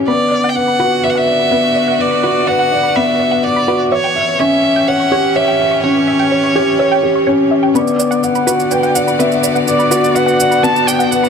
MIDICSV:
0, 0, Header, 1, 6, 480
1, 0, Start_track
1, 0, Key_signature, 2, "minor"
1, 0, Tempo, 480000
1, 77, Time_signature, 4, 2, 24, 8
1, 11290, End_track
2, 0, Start_track
2, 0, Title_t, "Synth arpeggio sound"
2, 0, Program_c, 0, 84
2, 79, Note_on_c, 0, 71, 92
2, 177, Note_off_c, 0, 71, 0
2, 317, Note_on_c, 0, 74, 65
2, 357, Note_off_c, 0, 74, 0
2, 441, Note_on_c, 0, 78, 84
2, 479, Note_off_c, 0, 78, 0
2, 678, Note_on_c, 0, 83, 66
2, 743, Note_off_c, 0, 83, 0
2, 798, Note_on_c, 0, 71, 98
2, 896, Note_off_c, 0, 71, 0
2, 1039, Note_on_c, 0, 74, 70
2, 1078, Note_off_c, 0, 74, 0
2, 1156, Note_on_c, 0, 78, 91
2, 1196, Note_off_c, 0, 78, 0
2, 1395, Note_on_c, 0, 83, 64
2, 1462, Note_off_c, 0, 83, 0
2, 1515, Note_on_c, 0, 71, 88
2, 1615, Note_off_c, 0, 71, 0
2, 1755, Note_on_c, 0, 74, 65
2, 1796, Note_off_c, 0, 74, 0
2, 1877, Note_on_c, 0, 78, 83
2, 1916, Note_off_c, 0, 78, 0
2, 2110, Note_on_c, 0, 83, 65
2, 2180, Note_off_c, 0, 83, 0
2, 2233, Note_on_c, 0, 71, 88
2, 2334, Note_off_c, 0, 71, 0
2, 2474, Note_on_c, 0, 74, 79
2, 2515, Note_off_c, 0, 74, 0
2, 2592, Note_on_c, 0, 78, 92
2, 2634, Note_off_c, 0, 78, 0
2, 2833, Note_on_c, 0, 83, 70
2, 2901, Note_off_c, 0, 83, 0
2, 2958, Note_on_c, 0, 71, 89
2, 3056, Note_off_c, 0, 71, 0
2, 3196, Note_on_c, 0, 74, 68
2, 3236, Note_off_c, 0, 74, 0
2, 3314, Note_on_c, 0, 78, 82
2, 3355, Note_off_c, 0, 78, 0
2, 3564, Note_on_c, 0, 83, 70
2, 3626, Note_off_c, 0, 83, 0
2, 3681, Note_on_c, 0, 71, 86
2, 3778, Note_off_c, 0, 71, 0
2, 3921, Note_on_c, 0, 76, 72
2, 3958, Note_off_c, 0, 76, 0
2, 4040, Note_on_c, 0, 79, 89
2, 4078, Note_off_c, 0, 79, 0
2, 4283, Note_on_c, 0, 85, 67
2, 4346, Note_off_c, 0, 85, 0
2, 4404, Note_on_c, 0, 73, 100
2, 4499, Note_off_c, 0, 73, 0
2, 4641, Note_on_c, 0, 76, 75
2, 4679, Note_off_c, 0, 76, 0
2, 4761, Note_on_c, 0, 79, 93
2, 4798, Note_off_c, 0, 79, 0
2, 5000, Note_on_c, 0, 85, 66
2, 5064, Note_off_c, 0, 85, 0
2, 5119, Note_on_c, 0, 73, 98
2, 5217, Note_off_c, 0, 73, 0
2, 5360, Note_on_c, 0, 76, 76
2, 5398, Note_off_c, 0, 76, 0
2, 5479, Note_on_c, 0, 79, 92
2, 5517, Note_off_c, 0, 79, 0
2, 5713, Note_on_c, 0, 85, 65
2, 5781, Note_off_c, 0, 85, 0
2, 5837, Note_on_c, 0, 73, 87
2, 5936, Note_off_c, 0, 73, 0
2, 6075, Note_on_c, 0, 76, 72
2, 6116, Note_off_c, 0, 76, 0
2, 6194, Note_on_c, 0, 79, 85
2, 6235, Note_off_c, 0, 79, 0
2, 6436, Note_on_c, 0, 85, 69
2, 6503, Note_off_c, 0, 85, 0
2, 6561, Note_on_c, 0, 73, 97
2, 6658, Note_off_c, 0, 73, 0
2, 6795, Note_on_c, 0, 76, 72
2, 6836, Note_off_c, 0, 76, 0
2, 6916, Note_on_c, 0, 79, 90
2, 6956, Note_off_c, 0, 79, 0
2, 7155, Note_on_c, 0, 85, 69
2, 7222, Note_off_c, 0, 85, 0
2, 7268, Note_on_c, 0, 73, 91
2, 7371, Note_off_c, 0, 73, 0
2, 7511, Note_on_c, 0, 76, 69
2, 7553, Note_off_c, 0, 76, 0
2, 7628, Note_on_c, 0, 79, 90
2, 7672, Note_off_c, 0, 79, 0
2, 7755, Note_on_c, 0, 71, 89
2, 7855, Note_off_c, 0, 71, 0
2, 7992, Note_on_c, 0, 74, 73
2, 8034, Note_off_c, 0, 74, 0
2, 8109, Note_on_c, 0, 78, 95
2, 8152, Note_off_c, 0, 78, 0
2, 8354, Note_on_c, 0, 83, 75
2, 8421, Note_off_c, 0, 83, 0
2, 8469, Note_on_c, 0, 71, 104
2, 8572, Note_off_c, 0, 71, 0
2, 8710, Note_on_c, 0, 74, 72
2, 8753, Note_off_c, 0, 74, 0
2, 8832, Note_on_c, 0, 78, 85
2, 8874, Note_off_c, 0, 78, 0
2, 9075, Note_on_c, 0, 83, 69
2, 9142, Note_off_c, 0, 83, 0
2, 9192, Note_on_c, 0, 71, 98
2, 9293, Note_off_c, 0, 71, 0
2, 9433, Note_on_c, 0, 74, 72
2, 9474, Note_off_c, 0, 74, 0
2, 9552, Note_on_c, 0, 78, 85
2, 9594, Note_off_c, 0, 78, 0
2, 9791, Note_on_c, 0, 83, 74
2, 9860, Note_off_c, 0, 83, 0
2, 9912, Note_on_c, 0, 71, 93
2, 10013, Note_off_c, 0, 71, 0
2, 10150, Note_on_c, 0, 74, 79
2, 10193, Note_off_c, 0, 74, 0
2, 10263, Note_on_c, 0, 78, 98
2, 10310, Note_off_c, 0, 78, 0
2, 10511, Note_on_c, 0, 83, 79
2, 10580, Note_off_c, 0, 83, 0
2, 10634, Note_on_c, 0, 71, 90
2, 10734, Note_off_c, 0, 71, 0
2, 10874, Note_on_c, 0, 74, 74
2, 10915, Note_off_c, 0, 74, 0
2, 10991, Note_on_c, 0, 78, 93
2, 11033, Note_off_c, 0, 78, 0
2, 11235, Note_on_c, 0, 83, 77
2, 11290, Note_off_c, 0, 83, 0
2, 11290, End_track
3, 0, Start_track
3, 0, Title_t, "Violin"
3, 0, Program_c, 1, 40
3, 79, Note_on_c, 1, 74, 84
3, 492, Note_on_c, 1, 79, 67
3, 507, Note_off_c, 1, 74, 0
3, 559, Note_on_c, 1, 78, 85
3, 574, Note_off_c, 1, 79, 0
3, 1037, Note_on_c, 1, 76, 84
3, 1052, Note_off_c, 1, 78, 0
3, 1100, Note_on_c, 1, 78, 70
3, 1115, Note_off_c, 1, 76, 0
3, 1181, Note_on_c, 1, 76, 93
3, 1196, Note_off_c, 1, 78, 0
3, 2008, Note_on_c, 1, 74, 85
3, 2023, Note_off_c, 1, 76, 0
3, 2475, Note_on_c, 1, 78, 88
3, 2490, Note_off_c, 1, 74, 0
3, 2958, Note_on_c, 1, 76, 84
3, 2973, Note_off_c, 1, 78, 0
3, 3435, Note_on_c, 1, 74, 80
3, 3450, Note_off_c, 1, 76, 0
3, 3796, Note_off_c, 1, 74, 0
3, 3924, Note_on_c, 1, 73, 81
3, 4395, Note_on_c, 1, 76, 86
3, 4410, Note_off_c, 1, 73, 0
3, 4877, Note_on_c, 1, 78, 87
3, 4892, Note_off_c, 1, 76, 0
3, 5356, Note_on_c, 1, 76, 78
3, 5371, Note_off_c, 1, 78, 0
3, 5826, Note_off_c, 1, 76, 0
3, 5832, Note_on_c, 1, 73, 78
3, 7235, Note_off_c, 1, 73, 0
3, 7756, Note_on_c, 1, 74, 78
3, 8237, Note_on_c, 1, 78, 90
3, 8252, Note_off_c, 1, 74, 0
3, 8722, Note_on_c, 1, 79, 96
3, 8737, Note_off_c, 1, 78, 0
3, 8951, Note_on_c, 1, 78, 89
3, 8966, Note_off_c, 1, 79, 0
3, 9192, Note_on_c, 1, 76, 76
3, 9207, Note_off_c, 1, 78, 0
3, 9435, Note_off_c, 1, 76, 0
3, 9675, Note_on_c, 1, 74, 85
3, 10152, Note_on_c, 1, 78, 91
3, 10167, Note_off_c, 1, 74, 0
3, 10630, Note_on_c, 1, 81, 105
3, 10645, Note_off_c, 1, 78, 0
3, 10870, Note_on_c, 1, 79, 93
3, 10885, Note_off_c, 1, 81, 0
3, 11111, Note_on_c, 1, 78, 81
3, 11126, Note_off_c, 1, 79, 0
3, 11290, Note_off_c, 1, 78, 0
3, 11290, End_track
4, 0, Start_track
4, 0, Title_t, "Felt piano"
4, 0, Program_c, 2, 0
4, 0, Control_c, 2, 64, 127
4, 78, Note_on_c, 2, 59, 76
4, 90, Control_c, 2, 64, 0
4, 261, Control_c, 2, 64, 127
4, 305, Note_off_c, 2, 59, 0
4, 557, Note_on_c, 2, 71, 54
4, 785, Note_off_c, 2, 71, 0
4, 795, Note_on_c, 2, 66, 82
4, 933, Note_off_c, 2, 66, 0
4, 1034, Note_on_c, 2, 71, 80
4, 1264, Note_off_c, 2, 71, 0
4, 1275, Note_on_c, 2, 74, 57
4, 1413, Note_off_c, 2, 74, 0
4, 1510, Note_on_c, 2, 59, 78
4, 1742, Note_off_c, 2, 59, 0
4, 1990, Note_on_c, 2, 71, 63
4, 2222, Note_off_c, 2, 71, 0
4, 2237, Note_on_c, 2, 66, 81
4, 2374, Note_off_c, 2, 66, 0
4, 2479, Note_on_c, 2, 71, 74
4, 2706, Note_off_c, 2, 71, 0
4, 2722, Note_on_c, 2, 74, 63
4, 2856, Note_off_c, 2, 74, 0
4, 2964, Note_on_c, 2, 59, 83
4, 3189, Note_off_c, 2, 59, 0
4, 3440, Note_on_c, 2, 71, 63
4, 3667, Note_off_c, 2, 71, 0
4, 3679, Note_on_c, 2, 66, 83
4, 3815, Note_off_c, 2, 66, 0
4, 3916, Note_on_c, 2, 73, 81
4, 3931, Control_c, 2, 64, 0
4, 4131, Control_c, 2, 64, 127
4, 4144, Note_off_c, 2, 73, 0
4, 4155, Note_on_c, 2, 76, 62
4, 4293, Note_off_c, 2, 76, 0
4, 4397, Note_on_c, 2, 61, 83
4, 4625, Note_off_c, 2, 61, 0
4, 4880, Note_on_c, 2, 73, 69
4, 5107, Note_off_c, 2, 73, 0
4, 5116, Note_on_c, 2, 67, 79
4, 5254, Note_off_c, 2, 67, 0
4, 5356, Note_on_c, 2, 73, 85
4, 5584, Note_off_c, 2, 73, 0
4, 5594, Note_on_c, 2, 76, 62
4, 5732, Note_off_c, 2, 76, 0
4, 5838, Note_on_c, 2, 61, 85
4, 6066, Note_off_c, 2, 61, 0
4, 6317, Note_on_c, 2, 73, 61
4, 6545, Note_off_c, 2, 73, 0
4, 6554, Note_on_c, 2, 67, 85
4, 6692, Note_off_c, 2, 67, 0
4, 6790, Note_on_c, 2, 73, 88
4, 7022, Note_off_c, 2, 73, 0
4, 7032, Note_on_c, 2, 67, 62
4, 7262, Note_off_c, 2, 67, 0
4, 7271, Note_on_c, 2, 61, 81
4, 7411, Note_off_c, 2, 61, 0
4, 7746, Note_on_c, 2, 59, 85
4, 7771, Control_c, 2, 64, 0
4, 7915, Control_c, 2, 64, 127
4, 7979, Note_off_c, 2, 59, 0
4, 8228, Note_on_c, 2, 71, 66
4, 8460, Note_off_c, 2, 71, 0
4, 8468, Note_on_c, 2, 66, 87
4, 8609, Note_off_c, 2, 66, 0
4, 8709, Note_on_c, 2, 71, 82
4, 8941, Note_off_c, 2, 71, 0
4, 8952, Note_on_c, 2, 74, 64
4, 9091, Note_off_c, 2, 74, 0
4, 9194, Note_on_c, 2, 59, 86
4, 9423, Note_off_c, 2, 59, 0
4, 9670, Note_on_c, 2, 71, 68
4, 9902, Note_off_c, 2, 71, 0
4, 9911, Note_on_c, 2, 66, 89
4, 10051, Note_off_c, 2, 66, 0
4, 10144, Note_on_c, 2, 71, 85
4, 10379, Note_off_c, 2, 71, 0
4, 10392, Note_on_c, 2, 74, 68
4, 10531, Note_off_c, 2, 74, 0
4, 10632, Note_on_c, 2, 59, 94
4, 10862, Note_off_c, 2, 59, 0
4, 11112, Note_on_c, 2, 71, 71
4, 11290, Note_off_c, 2, 71, 0
4, 11290, End_track
5, 0, Start_track
5, 0, Title_t, "String quartet"
5, 0, Program_c, 3, 48
5, 69, Note_on_c, 3, 50, 58
5, 357, Note_on_c, 3, 59, 66
5, 780, Note_on_c, 3, 74, 60
5, 898, Note_on_c, 3, 66, 78
5, 3913, Note_off_c, 3, 50, 0
5, 3913, Note_off_c, 3, 66, 0
5, 3916, Note_off_c, 3, 74, 0
5, 3922, Note_on_c, 3, 52, 71
5, 4127, Note_on_c, 3, 73, 58
5, 4277, Note_on_c, 3, 67, 66
5, 4291, Note_on_c, 3, 61, 72
5, 5126, Note_off_c, 3, 59, 0
5, 7752, Note_on_c, 3, 50, 75
5, 7760, Note_off_c, 3, 52, 0
5, 7760, Note_off_c, 3, 61, 0
5, 7760, Note_off_c, 3, 73, 0
5, 7763, Note_off_c, 3, 67, 0
5, 8036, Note_on_c, 3, 74, 76
5, 8187, Note_on_c, 3, 59, 74
5, 8417, Note_on_c, 3, 66, 75
5, 11290, Note_off_c, 3, 50, 0
5, 11290, Note_off_c, 3, 59, 0
5, 11290, Note_off_c, 3, 66, 0
5, 11290, Note_off_c, 3, 74, 0
5, 11290, End_track
6, 0, Start_track
6, 0, Title_t, "Drums"
6, 7753, Note_on_c, 9, 82, 37
6, 7853, Note_off_c, 9, 82, 0
6, 7874, Note_on_c, 9, 82, 18
6, 7974, Note_off_c, 9, 82, 0
6, 7996, Note_on_c, 9, 82, 65
6, 8095, Note_off_c, 9, 82, 0
6, 8117, Note_on_c, 9, 82, 27
6, 8217, Note_off_c, 9, 82, 0
6, 8234, Note_on_c, 9, 82, 37
6, 8334, Note_off_c, 9, 82, 0
6, 8353, Note_on_c, 9, 82, 19
6, 8453, Note_off_c, 9, 82, 0
6, 8476, Note_on_c, 9, 82, 61
6, 8576, Note_off_c, 9, 82, 0
6, 8597, Note_on_c, 9, 82, 27
6, 8697, Note_off_c, 9, 82, 0
6, 8712, Note_on_c, 9, 82, 35
6, 8812, Note_off_c, 9, 82, 0
6, 8832, Note_on_c, 9, 82, 17
6, 8932, Note_off_c, 9, 82, 0
6, 8955, Note_on_c, 9, 82, 63
6, 9055, Note_off_c, 9, 82, 0
6, 9078, Note_on_c, 9, 82, 29
6, 9178, Note_off_c, 9, 82, 0
6, 9198, Note_on_c, 9, 82, 37
6, 9298, Note_off_c, 9, 82, 0
6, 9317, Note_on_c, 9, 82, 17
6, 9417, Note_off_c, 9, 82, 0
6, 9435, Note_on_c, 9, 82, 66
6, 9535, Note_off_c, 9, 82, 0
6, 9556, Note_on_c, 9, 82, 28
6, 9656, Note_off_c, 9, 82, 0
6, 9676, Note_on_c, 9, 82, 40
6, 9776, Note_off_c, 9, 82, 0
6, 9795, Note_on_c, 9, 82, 19
6, 9895, Note_off_c, 9, 82, 0
6, 9915, Note_on_c, 9, 82, 74
6, 10015, Note_off_c, 9, 82, 0
6, 10042, Note_on_c, 9, 82, 29
6, 10141, Note_off_c, 9, 82, 0
6, 10157, Note_on_c, 9, 82, 40
6, 10257, Note_off_c, 9, 82, 0
6, 10282, Note_on_c, 9, 82, 22
6, 10382, Note_off_c, 9, 82, 0
6, 10400, Note_on_c, 9, 82, 68
6, 10500, Note_off_c, 9, 82, 0
6, 10518, Note_on_c, 9, 82, 29
6, 10618, Note_off_c, 9, 82, 0
6, 10639, Note_on_c, 9, 82, 38
6, 10739, Note_off_c, 9, 82, 0
6, 10761, Note_on_c, 9, 82, 19
6, 10861, Note_off_c, 9, 82, 0
6, 10881, Note_on_c, 9, 82, 70
6, 10981, Note_off_c, 9, 82, 0
6, 11001, Note_on_c, 9, 82, 30
6, 11101, Note_off_c, 9, 82, 0
6, 11121, Note_on_c, 9, 82, 40
6, 11221, Note_off_c, 9, 82, 0
6, 11244, Note_on_c, 9, 82, 19
6, 11290, Note_off_c, 9, 82, 0
6, 11290, End_track
0, 0, End_of_file